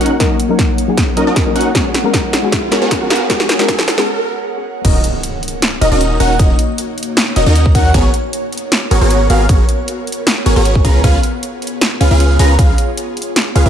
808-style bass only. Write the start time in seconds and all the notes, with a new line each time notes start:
4.85 D#1
5.81 D#1
5.91 D#1
6.20 D#1
7.36 D#1
7.46 D#2
7.75 D#2
7.94 G#1
8.91 G#1
9.01 G#1
9.30 G#1
10.46 G#1
10.56 G#1
10.85 C#2
11.04 C#2
12.01 C#2
12.11 C#2
12.39 C#2
12.59 C#2
13.56 C#2
13.66 C#2